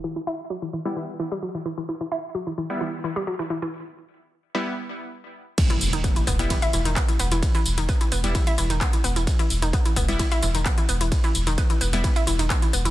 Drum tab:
CC |----------------|----------------|----------------|x---------------|
RD |----------------|----------------|----------------|x---x---x---x---|
HH |----------------|----------------|----------------|xxoxxxoxxxoxxxox|
TB |----------------|----------------|----------------|xxxxxxxxxxxxxxxx|
CP |----------------|----------------|----------------|------------x---|
BD |----------------|----------------|----------------|o---o-o-o---o---|

CC |----------------|----------------|----------------|
RD |x---x---x---x---|x---x---x---x---|x---x---x---x---|
HH |xooxxxoxxxoxxxox|xxoxxxoxxxoxxxox|xooxxxoxxxoxxxox|
TB |xxxxxxxxxxxxxxxx|xxxxxxxxxxxxxxxx|xxxxxxxxxxxxxxxx|
CP |------------x---|------------x---|------------x---|
BD |o---o---o---o---|o---o-o-o---o---|o---o---o---o---|